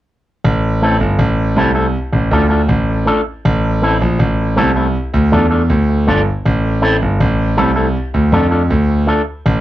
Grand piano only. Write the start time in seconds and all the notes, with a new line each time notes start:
0.44 A1
1.00 G1
1.19 A1
1.56 C2
2.13 A1
2.31 D2
2.69 A1
3.45 A1
4.01 A#1
4.19 A1
4.58 C2
5.14 D2
5.32 E2
5.70 D2
6.08 G1
6.46 A1
7.02 G1
7.20 A1
7.58 C2
8.14 D2
8.32 F2
8.70 D2
9.46 A1